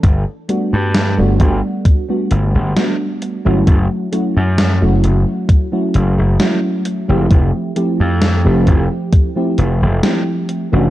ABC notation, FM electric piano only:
X:1
M:4/4
L:1/16
Q:1/4=66
K:Glyd
V:1 name="FM electric piano"
z2 [G,A,B,DF]3 [G,A,B,DF]4 [G,A,B,DF]3 [G,A,B,DF]3 [F,A,CEF]- | [F,A,CEF]2 [F,A,CEF]3 [F,A,CEF]4 [F,A,CEF]3 [F,A,CEF]3 [=F,A,=CEG]- | [=F,A,=CEG]2 [F,A,CEG]3 [F,A,CEG]4 [F,A,CEG]3 [F,A,CEG]3 [E,A,^CD^F] |]